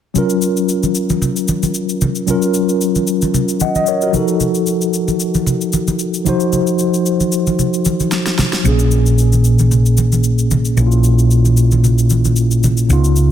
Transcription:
0.14 tine electric piano F#3 C#4 F4, low conga, shaker
0.18 tine electric piano A#4
0.30 shaker
0.42 shaker
0.57 shaker
0.69 shaker
0.83 high conga, shaker
0.95 shaker
1.10 high conga, shaker
1.22 low conga, shaker
1.36 shaker
1.48 high conga, shaker
1.63 high conga, shaker
1.74 shaker
1.89 shaker
2.01 high conga, low conga, shaker
2.15 shaker
2.27 tine electric piano F#3 C#4 F4 A#4, low conga, shaker
2.42 shaker
2.54 shaker
2.69 shaker
2.81 shaker
2.95 high conga, shaker
3.07 shaker
3.22 high conga, shaker
3.34 low conga, shaker
3.49 shaker
3.60 tine electric piano D#5 F#5, high conga, shaker
3.75 tine electric piano D#5, high conga, shaker
3.87 tine electric piano A#4 C#5, shaker
4.01 tine electric piano F#4 A#4, shaker
4.12 tine electric piano F3 D#4 F#4 A4, high conga, low conga, shaker
4.28 shaker
4.40 low conga, shaker
4.55 shaker
4.67 shaker
4.81 shaker
4.94 shaker
5.08 high conga, shaker
5.20 shaker
5.34 high conga, shaker
5.46 low conga, shaker
5.61 shaker
5.73 high conga, shaker
5.88 high conga, shaker
5.99 shaker
6.14 shaker
6.25 tine electric piano F3 D#4 F#4, high conga, low conga, shaker
6.29 tine electric piano C5
6.40 shaker
6.53 low conga, shaker
6.67 shaker
6.79 shaker
6.94 shaker
7.06 shaker
7.20 high conga, shaker
7.32 shaker
7.47 high conga, shaker
7.59 low conga, shaker
7.74 shaker
7.85 high conga, shaker
8.00 high conga, shaker
8.11 snare, shaker
8.26 snare, shaker
8.39 snare, high conga, low conga, shaker
8.52 snare, shaker
8.64 fingered electric bass A#1, tine electric piano A#2 A#3 C#4 G#4, low conga, shaker
8.79 shaker
8.91 shaker
9.06 shaker
9.18 shaker
9.33 high conga, shaker
9.44 shaker
9.59 high conga, shaker
9.71 low conga, shaker
9.86 shaker
9.97 high conga, shaker
10.12 high conga, shaker
10.24 shaker
10.39 shaker
10.51 high conga, low conga, shaker
10.65 shaker
10.76 fingered electric bass A#1, tine electric piano A#2 A#3 C#4 E4, low conga, shaker
10.87 tine electric piano F4
10.92 shaker
11.04 shaker
11.19 shaker
11.31 shaker
11.45 high conga, shaker
11.57 shaker
11.71 high conga, shaker
11.84 low conga, shaker
11.98 shaker
12.10 high conga, shaker
12.25 high conga, shaker
12.36 shaker
12.51 shaker
12.63 high conga, low conga, shaker
12.77 shaker
12.89 fingered electric bass C#2, tine electric piano C#3 B3 D#4 F4, low conga, shaker
13.04 shaker
13.16 shaker

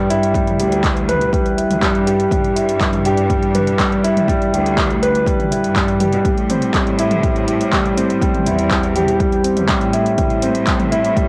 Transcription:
Already playing: cello section G2, grand piano G3 E4 G4 B4
0.10 grand piano E4, closed hi-hat
0.23 closed hi-hat
0.34 grand piano G3, kick, closed hi-hat
0.47 closed hi-hat, mid tom
0.59 cello section D2, grand piano G4, closed hi-hat
0.72 closed hi-hat
0.84 grand piano G3, kick, clap, closed hi-hat
0.97 closed hi-hat
1.09 grand piano B4, closed hi-hat, mid tom
1.21 closed hi-hat
1.33 grand piano G3, kick, closed hi-hat
1.46 closed hi-hat
1.57 grand piano E4, closed hi-hat
1.70 cello section D2, closed hi-hat, mid tom
1.82 cello section G2, grand piano G3, kick, clap, closed hi-hat
1.95 closed hi-hat
2.07 grand piano G4, closed hi-hat
2.20 closed hi-hat
2.31 cello section G2, grand piano G3, kick, closed hi-hat, mid tom
2.44 closed hi-hat
2.56 grand piano E4, closed hi-hat
2.69 closed hi-hat
2.81 grand piano G3, kick, clap, closed hi-hat
2.93 closed hi-hat, mid tom
3.05 grand piano G4, closed hi-hat
3.17 closed hi-hat
3.30 grand piano G3, kick, closed hi-hat
3.43 closed hi-hat
3.55 grand piano B4, closed hi-hat, mid tom
3.67 closed hi-hat
3.79 grand piano G3, kick, clap, closed hi-hat
3.92 closed hi-hat
4.04 grand piano E4, closed hi-hat
4.17 closed hi-hat, mid tom
4.28 grand piano G3, kick, closed hi-hat
4.42 closed hi-hat
4.52 cello section D2, grand piano G4, closed hi-hat
4.66 closed hi-hat
4.77 grand piano G3, kick, clap, closed hi-hat, mid tom
4.90 closed hi-hat
5.03 grand piano B4, closed hi-hat
5.15 closed hi-hat
5.26 grand piano G3, kick, closed hi-hat
5.40 closed hi-hat, mid tom
5.51 grand piano E4, closed hi-hat
5.63 cello section G2, closed hi-hat
5.76 grand piano G3, kick, clap, closed hi-hat
5.88 closed hi-hat
6.00 grand piano G4, closed hi-hat, mid tom
6.13 cello section B2, closed hi-hat
6.25 cello section A2, grand piano G3, kick, closed hi-hat
6.38 closed hi-hat
6.50 grand piano C4, closed hi-hat, mid tom
6.62 closed hi-hat
6.74 grand piano G3, kick, clap, closed hi-hat
6.87 closed hi-hat
6.99 grand piano E4, closed hi-hat
7.11 closed hi-hat, mid tom
7.23 grand piano G3, kick, closed hi-hat
7.36 closed hi-hat
7.48 grand piano G4, closed hi-hat
7.61 closed hi-hat
7.72 grand piano G3, kick, clap, closed hi-hat, mid tom
7.86 closed hi-hat
7.97 grand piano C4, closed hi-hat
8.10 closed hi-hat
8.22 grand piano G3, kick, closed hi-hat
8.35 closed hi-hat, mid tom
8.46 cello section E2, grand piano E4, closed hi-hat
8.59 closed hi-hat
8.71 grand piano G3, kick, clap, closed hi-hat
8.83 closed hi-hat
8.96 grand piano G4, closed hi-hat, mid tom
9.08 closed hi-hat
9.20 grand piano G3, kick, closed hi-hat
9.32 closed hi-hat
9.44 grand piano C4, closed hi-hat
9.57 cello section E2, closed hi-hat, mid tom
9.69 cello section A2, grand piano G3, kick, clap, closed hi-hat
9.81 closed hi-hat
9.93 grand piano E4, closed hi-hat
10.06 closed hi-hat
10.18 cello section A2, grand piano G3, kick, closed hi-hat, mid tom
10.30 closed hi-hat
10.42 grand piano C4, closed hi-hat
10.55 closed hi-hat
10.67 grand piano G3, kick, clap, closed hi-hat
10.80 closed hi-hat, mid tom
10.92 grand piano E4, closed hi-hat
11.05 closed hi-hat
11.17 grand piano G3, kick, closed hi-hat

